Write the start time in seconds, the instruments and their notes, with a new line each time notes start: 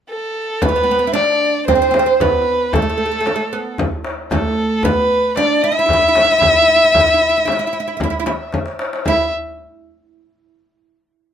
0.09 violin A4
0.62 oud B3, violin B4, frame drum, darbuka dum
0.69 oud B3
0.76 oud B3, darbuka ka
0.84 oud B3
0.91 oud B3
0.99 oud B3
1.07 oud E4
1.13 oud D4, violin D5, darbuka tek, frame drum
1.41 darbuka ka
1.55 darbuka ka
1.67 oud C4, violin C5, darbuka dum, frame drum
1.75 oud C4
1.81 oud C4, darbuka ka
1.91 oud C4, darbuka tek, frame drum
1.99 oud C4
2.06 oud C4
2.20 oud B3, violin B4, darbuka dum, frame drum
2.34 darbuka ka
2.73 oud A3, violin A4, darbuka dum, frame drum
2.82 oud A3, darbuka ka
2.90 oud A3
2.98 oud A3
3.06 oud A3
3.12 oud A3
3.20 oud A3
3.26 oud A3, darbuka tek, frame drum
3.36 oud A3
3.52 oud B3, darbuka ka
3.65 darbuka ka
3.78 darbuka dum, frame drum
3.92 darbuka ka
4.04 darbuka tek
4.31 oud A3, violin A4, darbuka dum, frame drum
4.44 darbuka ka
4.83 oud B3, violin B4, darbuka dum, frame drum
4.96 darbuka ka
5.36 oud D4, violin D5, darbuka tek, frame drum
5.62 oud E4, violin E5, darbuka ka
5.72 oud E4
5.76 oud E4, darbuka ka
5.86 oud E4, darbuka dum
5.90 oud E4, frame drum
6.02 oud E4, darbuka ka
6.08 oud E4
6.15 oud E4, darbuka tek, frame drum
6.24 oud E4
6.32 oud E4
6.38 oud E4, darbuka dum, frame drum
6.46 oud E4
6.53 oud E4, darbuka ka
6.62 oud E4
6.68 oud E4
6.76 oud E4
6.84 oud E4
6.92 oud E4, darbuka dum, frame drum
7.00 oud E4
7.07 oud E4, darbuka ka
7.14 oud E4
7.21 oud E4, darbuka ka
7.29 oud E4
7.37 oud E4
7.45 oud E4, darbuka tek, frame drum
7.52 oud E4
7.59 oud E4
7.67 oud E4
7.73 oud E4, darbuka ka
7.80 oud E4
7.88 oud E4, darbuka ka
7.97 oud E4, darbuka dum, frame drum
8.03 oud E4
8.10 oud E4
8.20 oud E4
8.26 oud E4, darbuka tek, frame drum
8.53 darbuka tek, frame drum
8.66 darbuka ka
8.79 darbuka tek
8.93 darbuka ka
9.06 oud E4, violin E5, frame drum, darbuka dum